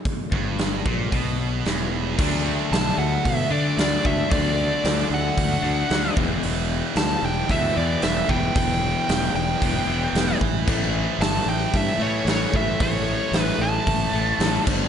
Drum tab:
CC |--------|x-------|--------|--------|
HH |o-o-o-o-|--o-o-o-|o-o-o-o-|o-o-o-o-|
SD |--o---o-|--o---o-|--o---o-|--o---o-|
BD |oo-oo---|o---o--o|o---o--o|----o--o|

CC |--------|x-------|-------x|
HH |o-o-o-o-|--o-o-o-|o-o-o-o-|
SD |--o---o-|--o---o-|--o---o-|
BD |o---o--o|o---o--o|o---o--o|